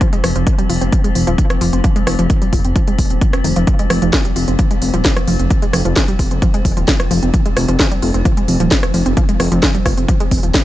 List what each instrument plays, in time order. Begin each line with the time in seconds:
Already playing: synth drone F3 C4
0.01 synth arpeggio sound F3, kick, closed hi-hat
0.13 synth arpeggio sound G#3, closed hi-hat
0.24 detuned saw bass F1, synth arpeggio sound F3, cross-stick, open hi-hat
0.36 detuned saw bass F1, synth arpeggio sound F3, closed hi-hat
0.47 synth arpeggio sound D#3, kick, closed hi-hat
0.58 synth arpeggio sound G3, closed hi-hat
0.69 detuned saw bass F1, synth arpeggio sound F4, open hi-hat
0.81 detuned saw bass F1, synth arpeggio sound C4, closed hi-hat
0.92 synth arpeggio sound F3, kick, closed hi-hat
1.04 synth arpeggio sound G#3, closed hi-hat
1.15 detuned saw bass F1, synth arpeggio sound F3, open hi-hat
1.27 detuned saw bass D#1, synth arpeggio sound F3, closed hi-hat
1.38 synth arpeggio sound D#3, kick, closed hi-hat
1.50 synth arpeggio sound F3, cross-stick, closed hi-hat
1.61 detuned saw bass F1, synth arpeggio sound F3, open hi-hat
1.73 detuned saw bass F1, synth arpeggio sound C4, closed hi-hat
1.84 synth arpeggio sound F3, kick, closed hi-hat
1.96 synth arpeggio sound G#3, closed hi-hat
2.07 detuned saw bass F1, synth arpeggio sound F3, cross-stick, open hi-hat
2.19 detuned saw bass F1, synth arpeggio sound F3, closed hi-hat
2.30 synth arpeggio sound D#3, kick, closed hi-hat
2.42 synth arpeggio sound G3, closed hi-hat
2.53 detuned saw bass F1, synth arpeggio sound F4, kick, open hi-hat
2.65 detuned saw bass F1, synth arpeggio sound C4, closed hi-hat
2.76 synth arpeggio sound F3, kick, closed hi-hat
2.88 synth arpeggio sound G#3, closed hi-hat
2.99 detuned saw bass F1, synth arpeggio sound F3, kick, open hi-hat
3.10 detuned saw bass D#1, synth arpeggio sound C4, closed hi-hat
3.21 synth arpeggio sound F3, kick, closed hi-hat
3.33 synth arpeggio sound C#4, cross-stick, closed hi-hat
3.44 detuned saw bass F1, synth arpeggio sound D#3, open hi-hat
3.56 detuned saw bass F1, synth arpeggio sound F3, closed hi-hat
3.67 synth arpeggio sound F3, kick, closed hi-hat
3.79 synth arpeggio sound G#3, closed hi-hat
3.90 detuned saw bass F1, synth arpeggio sound F3, cross-stick, open hi-hat
4.02 detuned saw bass F1, synth arpeggio sound F3, closed hi-hat
4.13 synth arpeggio sound D#3, kick, snare, closed hi-hat
4.25 synth arpeggio sound G3, closed hi-hat
4.36 detuned saw bass F1, synth arpeggio sound F4, open hi-hat
4.48 detuned saw bass F1, synth arpeggio sound C4, closed hi-hat
4.59 synth arpeggio sound F3, kick, closed hi-hat
4.71 synth arpeggio sound G#3, closed hi-hat
4.82 detuned saw bass F1, synth arpeggio sound F3, open hi-hat
4.94 detuned saw bass D#1, synth arpeggio sound F3, closed hi-hat
5.05 synth arpeggio sound D#3, kick, snare, closed hi-hat
5.17 synth arpeggio sound F3, cross-stick, closed hi-hat
5.28 detuned saw bass F1, synth arpeggio sound F3, open hi-hat
5.39 detuned saw bass F1, synth arpeggio sound C4, closed hi-hat
5.50 synth arpeggio sound F3, kick, closed hi-hat
5.62 synth arpeggio sound G#3, closed hi-hat
5.73 detuned saw bass F1, synth arpeggio sound F3, cross-stick, open hi-hat
5.85 detuned saw bass F1, synth arpeggio sound F3, closed hi-hat
5.96 synth arpeggio sound D#3, kick, snare, closed hi-hat
6.08 synth arpeggio sound G3, closed hi-hat
6.19 detuned saw bass F1, synth arpeggio sound F4, kick, open hi-hat
6.31 detuned saw bass F1, synth arpeggio sound C4, closed hi-hat
6.42 synth arpeggio sound F3, kick, closed hi-hat
6.54 synth arpeggio sound G#3, closed hi-hat
6.65 detuned saw bass F1, synth arpeggio sound F3, kick, open hi-hat
6.77 detuned saw bass D#1, synth arpeggio sound F3, closed hi-hat
6.88 synth arpeggio sound D#3, kick, snare, closed hi-hat
7.00 synth arpeggio sound F3, cross-stick, closed hi-hat
7.11 detuned saw bass F1, synth arpeggio sound F3, open hi-hat
7.23 detuned saw bass F1, synth arpeggio sound C4, closed hi-hat
7.34 synth arpeggio sound F3, kick, closed hi-hat
7.46 synth arpeggio sound G#3, closed hi-hat
7.57 detuned saw bass F1, synth arpeggio sound F3, cross-stick, open hi-hat
7.68 detuned saw bass F1, synth arpeggio sound F3, closed hi-hat
7.79 synth arpeggio sound D#3, kick, snare, closed hi-hat
7.91 synth arpeggio sound G3, closed hi-hat
8.02 detuned saw bass F1, synth arpeggio sound F4, open hi-hat
8.14 detuned saw bass F1, synth arpeggio sound C4, closed hi-hat
8.25 synth arpeggio sound F3, kick, closed hi-hat
8.37 synth arpeggio sound G#3, closed hi-hat
8.48 detuned saw bass F1, synth arpeggio sound F3, open hi-hat
8.60 detuned saw bass D#1, synth arpeggio sound F3, closed hi-hat
8.71 synth arpeggio sound D#3, kick, snare, closed hi-hat
8.83 synth arpeggio sound F3, cross-stick, closed hi-hat
8.94 detuned saw bass F1, synth arpeggio sound F3, open hi-hat
9.06 detuned saw bass F1, synth arpeggio sound C4, closed hi-hat
9.17 synth arpeggio sound F3, kick, closed hi-hat
9.29 synth arpeggio sound G#3, closed hi-hat
9.40 detuned saw bass F1, synth arpeggio sound F3, cross-stick, open hi-hat
9.52 detuned saw bass F1, synth arpeggio sound F3, closed hi-hat
9.63 synth arpeggio sound D#3, kick, snare, closed hi-hat
9.75 synth arpeggio sound G3, closed hi-hat
9.86 detuned saw bass F1, synth arpeggio sound F4, kick, cross-stick, open hi-hat
9.97 detuned saw bass F1, synth arpeggio sound C4, closed hi-hat
10.09 synth arpeggio sound F3, kick, closed hi-hat
10.20 synth arpeggio sound G#3, closed hi-hat
10.31 detuned saw bass F1, synth arpeggio sound C4, kick, open hi-hat
10.43 detuned saw bass D#1, synth arpeggio sound F3, closed hi-hat
10.54 synth arpeggio sound F3, kick, snare, closed hi-hat